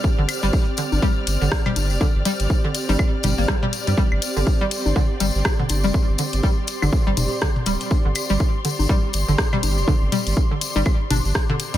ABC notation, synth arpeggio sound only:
X:1
M:4/4
L:1/16
Q:"Swing 16ths" 1/4=122
K:Cdor
V:1 name="Synth arpeggio sound" clef=bass
z D, z G, z2 D, z G, z2 D, z G, z2 | D, z G, z2 D, z G, z2 G, B, G, G, z G, | G, z2 D, z G, z2 D, z G, z2 D, z G, | z2 D, z G, z2 D, z G, z2 D, z G, z |
z D, z G, z2 D, z G, z2 D, z G, z2 | D, z G, z2 D, z G, z2 D z2 D, z G, |]